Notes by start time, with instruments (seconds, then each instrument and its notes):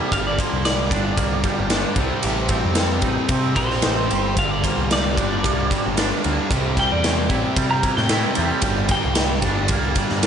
Already playing: distorted electric guitar C3 G3 C4, clean electric guitar E3 G3 E4
0.12 picked electric bass G1, distorted electric guitar G2 D3, clean electric guitar G2 F5, kick, ride
0.16 distorted electric guitar G3
0.27 clean electric guitar D5
0.39 clean electric guitar A#3 C5, kick, ride
0.52 picked electric bass C2
0.65 clean electric guitar G3 D5, snare, ride
0.91 picked electric bass G1, distorted electric guitar D3 G3, clean electric guitar D4, kick, ride
0.95 distorted electric guitar G2
1.17 picked electric bass C2, clean electric guitar A#3, kick, ride
1.44 clean electric guitar G3, kick, ride
1.59 picked electric bass G1
1.69 distorted electric guitar G2 D3, clean electric guitar D4, snare, ride
1.73 distorted electric guitar G3
1.95 picked electric bass C2, distorted electric guitar C3 G3, clean electric guitar C3, kick, ride
2.01 distorted electric guitar C4
2.22 picked electric bass A1, clean electric guitar C3, ride
2.49 clean electric guitar C4, kick, ride
2.65 picked electric bass F2
2.74 distorted electric guitar C3 G3 C4, clean electric guitar G3, snare, ride
3.02 picked electric bass A1, clean electric guitar D#4, kick, ride
3.29 picked electric bass C3, clean electric guitar C4, kick, ride
3.54 picked electric bass A#1, distorted electric guitar G3 C4, clean electric guitar G3 C5, kick, ride
3.59 distorted electric guitar C3
3.70 snare
3.82 picked electric bass A1, clean electric guitar D#4, snare, ride
4.11 picked electric bass G1, clean electric guitar C4, ride
4.36 picked electric bass G1, distorted electric guitar G2 D3, clean electric guitar G2 F5, kick, ride
4.40 distorted electric guitar G3
4.51 clean electric guitar D5
4.64 clean electric guitar A#3 C5, kick, ride
4.77 picked electric bass C2
4.91 clean electric guitar G3 D5, snare, ride
5.14 picked electric bass G1, distorted electric guitar D3 G3, kick, ride
5.19 distorted electric guitar G2, clean electric guitar D4
5.44 picked electric bass C2, clean electric guitar A#3, kick, ride
5.71 clean electric guitar G3, kick, ride
5.86 picked electric bass G1
5.96 distorted electric guitar G2 D3, clean electric guitar D4, snare, ride
6.00 distorted electric guitar G3
6.24 picked electric bass D2, clean electric guitar A#3, ride
6.50 picked electric bass C2, distorted electric guitar C3 G3 C4, clean electric guitar C3, kick, ride
6.77 clean electric guitar G3 G5, kick, ride
6.92 picked electric bass E2, clean electric guitar D5
7.03 clean electric guitar E3, snare, ride
7.29 picked electric bass A1, distorted electric guitar C3 G3 C4, clean electric guitar E4, kick, ride
7.57 picked electric bass C3, clean electric guitar G3, kick, ride
7.71 clean electric guitar A#5
7.83 clean electric guitar E3, kick, ride
7.97 picked electric bass A2, clean electric guitar G5, snare
8.09 distorted electric guitar C3 G3 C4, clean electric guitar E4, snare, ride
8.35 picked electric bass E2, clean electric guitar G3, ride
8.62 picked electric bass G1, distorted electric guitar G2 D3, clean electric guitar G2, kick, ride
8.66 distorted electric guitar G3
8.89 clean electric guitar A#3 G5, kick, ride
9.05 picked electric bass C2
9.15 clean electric guitar G3, snare, ride
9.42 picked electric bass G1, distorted electric guitar D3 G3, clean electric guitar D4, kick, ride
9.46 distorted electric guitar G2
9.68 picked electric bass C2, clean electric guitar A#3, kick, ride
9.95 clean electric guitar G3, kick, ride
10.09 picked electric bass G2, snare
10.23 distorted electric guitar G2, snare, ride